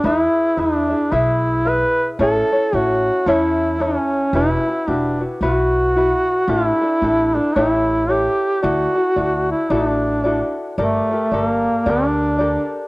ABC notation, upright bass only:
X:1
M:4/4
L:1/8
Q:"Swing" 1/4=112
K:Amix
V:1 name="Upright bass" clef=bass
E,, z E,,2 B,,,4 | A,,, z A,,,2 E,,4 | E,,, z E,,,2 B,,,4 | A,,, z A,,,2 A,,,4 |
D,, z D,,2 A,,,4 | G,,, z G,,,2 D,,4 |]